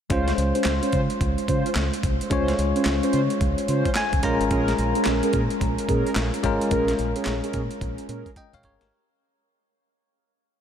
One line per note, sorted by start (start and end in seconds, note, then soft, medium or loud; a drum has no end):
0.10 0.32 C#2 loud
0.10 2.26 G#3 medium
0.10 0.32 C#4 medium
0.10 2.27 C#4 medium
0.10 0.32 F4 medium
0.10 2.27 F4 medium
0.10 0.32 C5 loud
0.10 2.28 C5 medium
0.10 kick loud
0.10 closed hi-hat medium
0.28 snare medium
0.28 closed hi-hat medium
0.38 0.51 C#2 medium
0.38 closed hi-hat medium
0.55 0.72 C#4 medium
0.55 0.72 F4 medium
0.55 0.73 C5 medium
0.55 closed hi-hat medium
0.64 0.79 C#2 medium
0.64 snare loud
0.64 clap medium
0.64 closed hi-hat medium
0.82 1.00 C#4 medium
0.82 1.00 F4 medium
0.82 1.00 C5 medium
0.82 closed hi-hat medium
0.93 1.07 C#3 medium
0.93 kick medium
0.93 closed hi-hat medium
1.10 closed hi-hat soft
1.21 1.34 C#2 loud
1.21 kick medium
1.21 closed hi-hat medium
1.38 closed hi-hat medium
1.48 1.62 C#3 medium
1.48 1.69 C#4 medium
1.48 1.69 F4 medium
1.48 1.70 C5 medium
1.48 kick medium
1.48 closed hi-hat medium
1.66 closed hi-hat soft
1.75 1.89 C#2 medium
1.75 snare loud
1.75 clap medium
1.75 closed hi-hat medium
1.94 closed hi-hat medium
2.03 2.17 C2 medium
2.03 kick loud
2.03 closed hi-hat medium
2.21 closed hi-hat medium
2.30 2.52 C#2 loud
2.30 4.19 G#3 medium
2.30 2.52 C#4 loud
2.30 4.20 C#4 medium
2.30 2.52 F4 medium
2.30 4.20 F4 medium
2.30 2.52 C5 loud
2.30 4.21 C#5 medium
2.30 kick loud
2.30 closed hi-hat medium
2.48 snare medium
2.48 closed hi-hat medium
2.59 2.72 C#2 medium
2.59 closed hi-hat medium
2.76 2.93 C#4 medium
2.76 2.93 F4 medium
2.76 2.93 C5 medium
2.76 closed hi-hat medium
2.85 2.99 C#2 medium
2.85 snare loud
2.85 clap medium
2.85 closed hi-hat medium
3.03 3.20 C#4 medium
3.03 3.21 F4 medium
3.03 3.21 C5 medium
3.03 closed hi-hat medium
3.13 3.27 C#3 medium
3.13 closed hi-hat medium
3.30 closed hi-hat soft
3.41 3.54 C#2 loud
3.41 kick medium
3.41 closed hi-hat medium
3.58 closed hi-hat medium
3.68 3.82 C#3 medium
3.68 3.90 C#4 medium
3.68 3.90 F4 medium
3.68 3.90 C5 medium
3.68 closed hi-hat medium
3.85 kick medium
3.85 closed hi-hat soft
3.95 4.22 G#5 medium
3.95 snare loud
3.95 clap medium
3.95 closed hi-hat medium
4.13 4.21 C#2 medium
4.13 kick medium
4.13 closed hi-hat medium
4.23 4.37 A#1 loud
4.23 6.39 G#3 medium
4.23 4.45 C#4 medium
4.23 6.40 C#4 medium
4.23 6.40 F4 medium
4.23 4.45 G#4 medium
4.23 4.45 A#4 medium
4.23 6.40 A#4 medium
4.23 4.49 A#5 medium
4.23 kick loud
4.23 closed hi-hat medium
4.41 4.49 G#1 medium
4.41 closed hi-hat medium
4.51 4.73 A#1 loud
4.51 4.72 C#4 medium
4.51 4.72 G#4 medium
4.51 4.73 A#4 loud
4.51 kick loud
4.51 closed hi-hat medium
4.68 snare medium
4.68 closed hi-hat medium
4.78 4.92 A#1 loud
4.78 closed hi-hat medium
4.95 5.13 C#4 medium
4.95 5.13 G#4 medium
4.95 5.13 A#4 medium
4.95 closed hi-hat medium
5.05 5.20 A#1 medium
5.05 snare loud
5.05 clap medium
5.05 closed hi-hat medium
5.23 5.41 C#4 medium
5.23 5.41 G#4 medium
5.23 5.41 A#4 medium
5.23 closed hi-hat medium
5.33 5.47 A#2 medium
5.33 kick medium
5.33 closed hi-hat medium
5.50 closed hi-hat soft
5.61 5.74 A#1 loud
5.61 kick loud
5.61 closed hi-hat medium
5.78 closed hi-hat medium
5.88 6.02 A#2 medium
5.88 6.10 C#4 medium
5.88 6.10 G#4 medium
5.88 6.10 A#4 medium
5.88 kick medium
5.88 closed hi-hat medium
6.07 closed hi-hat soft
6.15 6.29 A#1 medium
6.15 snare loud
6.15 clap medium
6.15 closed hi-hat medium
6.34 closed hi-hat medium
6.43 6.57 G#1 medium
6.43 8.60 G#3 medium
6.43 8.60 C#4 medium
6.43 8.60 F4 medium
6.43 8.33 A#4 medium
6.43 kick loud
6.43 closed hi-hat medium
6.61 closed hi-hat medium
6.71 6.93 A#1 loud
6.71 6.93 C#4 medium
6.71 6.93 G#4 medium
6.71 6.93 A#4 loud
6.71 kick loud
6.71 closed hi-hat medium
6.88 snare medium
6.88 closed hi-hat medium
6.99 7.12 A#1 medium
6.99 closed hi-hat medium
7.16 7.33 C#4 medium
7.16 7.33 G#4 medium
7.16 7.34 A#4 medium
7.16 closed hi-hat medium
7.25 7.40 A#1 medium
7.25 snare loud
7.25 clap medium
7.25 closed hi-hat medium
7.44 7.61 C#4 medium
7.44 7.61 G#4 medium
7.44 7.61 A#4 medium
7.44 closed hi-hat medium
7.53 7.67 A#2 loud
7.53 kick medium
7.53 closed hi-hat medium
7.71 closed hi-hat soft
7.81 7.95 A#1 loud
7.81 kick medium
7.81 closed hi-hat medium
7.98 closed hi-hat medium
8.09 8.22 A#2 medium
8.09 8.30 C#4 medium
8.09 8.30 G#4 medium
8.09 8.30 A#4 medium
8.09 closed hi-hat medium
8.26 kick medium
8.26 closed hi-hat soft
8.36 8.53 D#5 medium
8.36 8.53 G5 medium
8.36 kick medium
8.36 closed hi-hat medium
8.53 8.61 A#1 medium
8.53 8.64 C#5 medium
8.53 8.64 F5 medium
8.53 kick medium
8.53 closed hi-hat medium
8.63 8.85 C#4 medium
8.63 8.85 G#4 medium
8.63 8.85 A#4 medium
8.63 8.81 A#4 medium
8.63 8.81 C#5 medium
8.63 kick medium
8.63 closed hi-hat medium
8.81 8.89 G#1 medium
8.81 9.08 G4 medium
8.81 9.08 A#4 medium
8.81 snare medium
8.81 closed hi-hat medium